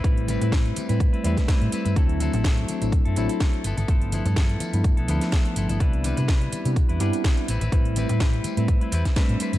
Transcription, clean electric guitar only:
X:1
M:4/4
L:1/16
Q:"Swing 16ths" 1/4=125
K:Ador
V:1 name="Clean electric guitar"
[G,CEB]2 [G,CEB] [CEB] [G,CEB]3 [CEB]2 [CEB] [G,CEB] C [G,CEB]2 [G,CEB] [CEB] | [F,CEA]2 [F,CEA] [CEA] [F,CEA]4- [F,CEA] [CEA] [F,CEA] [CEA] [F,CEA]2 [=F,B,EA] [B,EA] | [=F,EA]2 [F,B,EA] [B,EA] [F,B,EA]4- [F,B,EA] [B,EA] [F,B,EA]2 [EA]2 [F,B,EA] [B,EA] | [G,DEB]2 [G,DEB] [DEB] [G,DEB]4- [G,DEB] [DEB] [G,DEB]2 [G,DEB]2 [G,CEB] [CEB] |
[G,CEB]2 [G,CEB] [CEB] [G,CEB]3 [CEB]2 [CEB] [G,CEB]2 [G,CEB]2 [G,CEB] [EB] |]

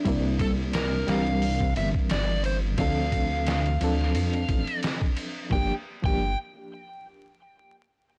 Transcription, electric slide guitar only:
X:1
M:4/4
L:1/16
Q:"Swing 16ths" 1/4=88
K:Gdor
V:1 name="Electric slide guitar"
z2 A2 B2 f4 e2 d2 c2 | f12 z4 | g z2 g2 z8 z3 |]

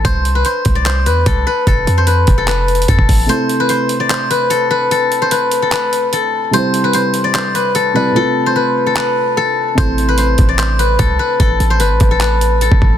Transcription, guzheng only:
X:1
M:4/4
L:1/16
Q:1/4=148
K:Am
V:1 name="Guzheng"
c3 B c3 d c2 B2 A2 B2 | A3 c B3 A B4 A2 z2 | c3 B c3 d c2 B2 A2 B2 | A3 c B3 A B4 A4 |
c3 B c3 d c2 B2 A2 B2 | A3 c B3 A B4 A2 z2 | c3 B c3 d c2 B2 A2 B2 | A3 c B3 A B4 A4 |]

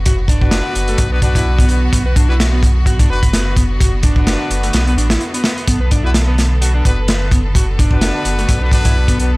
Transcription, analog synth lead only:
X:1
M:4/4
L:1/16
Q:"Swing 16ths" 1/4=128
K:Bm
V:1 name="Analog synth lead"
F z D4 z A, z B, D E z B,3 | B, B D E z B, z2 F D B4 B, z | F z D4 z A, z B, D E z B,3 | B, B D E z B, z2 F D B4 B, z |
F z D4 z A, z B, D E z B,3 |]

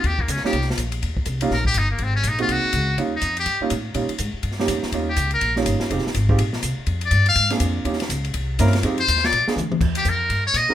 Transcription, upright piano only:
X:1
M:4/4
L:1/8
Q:"Swing" 1/4=246
K:Ebmix
V:1 name="Upright piano"
z3 [G,B,DEF] z4 | z3 [G,B,DEF] z4 | z3 [A,B,CE_G]3 z2 | [G,B,DEF] z4 [G,B,DEF] z2 |
[G,B,DEF] z4 [G,B,DEG]3 | [G,B,DEF] z4 [G,B,DEF]3 | [A,CEFG] z2 [A,CEFG] z4 | z4 z [B,C=DFA]3 |
[B,DEFG] z4 z [B,CD=EB] z | [A,CEFG] z4 [A,_C=DFA] z2 | z6 z [A,CE_GB] |]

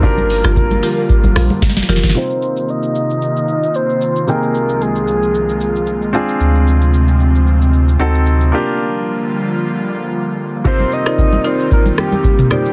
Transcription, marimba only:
X:1
M:4/4
L:1/16
Q:"Swing 16ths" 1/4=113
K:Cm
V:1 name="Marimba"
z3 [FGB] z2 [FGB] z6 z [FGB] z | z16 | z16 | z16 |
z16 | z3 [EFBcd] z2 [EFBcd] z6 z [EFBcd] z |]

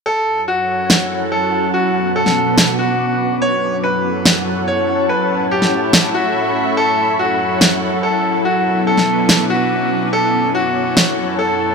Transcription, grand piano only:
X:1
M:4/4
L:1/8
Q:1/4=143
K:F#m
V:1 name="Grand piano"
A2 F4 A2 | F2 A3 F3 | c2 B4 c2 | B2 =G3 F3 |
A2 F4 A2 | F2 A3 F3 | A2 F4 A2 |]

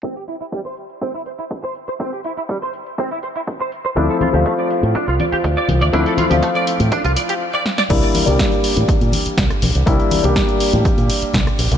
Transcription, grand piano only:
X:1
M:4/4
L:1/16
Q:1/4=122
K:Cmix
V:1 name="Grand piano"
z16 | z16 | [F,A,CE]3 [F,A,CF]12- [F,A,CF] | [F,A,CE]3 [F,A,CF]8- [F,A,CF] z4 |
[G,B,DE]3 [G,B,DG]12- [G,B,DG] | [G,B,DE]3 [G,B,DG]12- [G,B,DG] |]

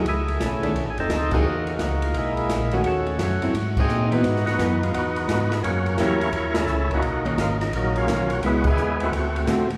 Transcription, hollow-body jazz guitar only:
X:1
M:4/4
L:1/8
Q:"Swing" 1/4=172
K:Elyd
V:1 name="Hollow-body jazz guitar"
z3 [D,=A,=D] z3 [E,^A,^DG] | z6 z [D,=A,CF]- | [D,=A,CF]2 z [F,=CE] z3 [E,B,D] | z2 [E,B,D] z4 z |
z2 [F,A,E=G] z4 z | z [D,A,C]3 z2 [D,A,C] z | [G,B,E] z4 z [=D,=A,=CF] z |]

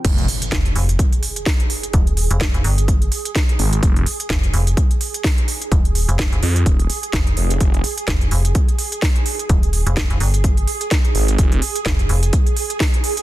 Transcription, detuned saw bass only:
X:1
M:4/4
L:1/8
Q:"Swing 16ths" 1/4=127
K:Fm
V:1 name="Detuned saw bass" clef=bass
F,,, z6 z | z6 z A,,, | F,,, z6 z | z3 F,, E,,, z2 F,,, |
F,,, z6 z | z6 z A,,, | F,,, z6 z |]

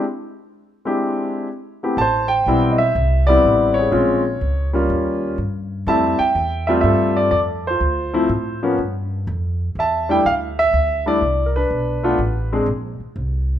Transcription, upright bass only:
X:1
M:4/4
L:1/8
Q:"Swing" 1/4=124
K:Am
V:1 name="Upright bass" clef=bass
z8 | A,,,2 B,,,2 C,,2 A,,,2 | _B,,,2 _D,,2 ^D,,2 G,,2 | F,, z E,,2 G,,2 F,,2 |
D,,2 A,,2 G,,2 F,,2 | E,,2 D,,2 D,,2 C,,2 | B,,,2 A,,,2 _B,,, z C,,2 |]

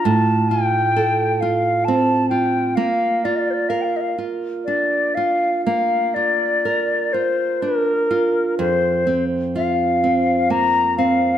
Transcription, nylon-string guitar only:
X:1
M:3/4
L:1/8
Q:1/4=63
K:Bb
V:1 name="Nylon-string guitar"
A,, F A F C F | B, F B F D F | B, F B F D F | F,, C F C B, C |]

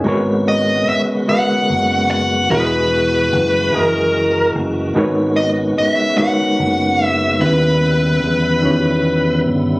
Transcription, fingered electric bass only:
X:1
M:6/8
L:1/8
Q:3/8=49
K:G#m
V:1 name="Fingered electric bass" clef=bass
G,,,2 z2 F,,,2 | E,,,2 F,,, F,,,2 F,,, | G,,,2 z2 F,,,2 | D,,2 E,, E,,2 =G,,, |]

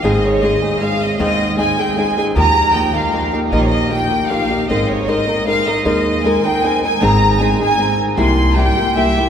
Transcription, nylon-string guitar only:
X:1
M:3/4
L:1/8
Q:"Swing" 1/4=155
K:Ab
V:1 name="Nylon-string guitar"
[A,,E,A,CEA]2 [A,CEA] [A,CEA] [A,CEA]2 | [A,,E,A,CEA]2 [A,CEA] [A,CEA] [A,CEA] [A,CEA] | [E,F,B,EG]2 [F,B,EG] [B,EG] [F,B,EG] [B,EG] | [E,F,B,EG]2 [F,B,EG] [B,EG] [F,B,EG] [B,EG] |
[A,CEB]2 [A,CEB] [CEB] [A,CEB] [CEB] | [A,CEB]2 [A,CEB] [CEB] [A,CEB] [CEB] | [A,,E,A,CEA]2 [A,CEA] [A,CEA] [A,CEA]2 | [C,G,B,=EG]2 [G,B,EG] [B,EG] [G,B,EG] [B,EG] |]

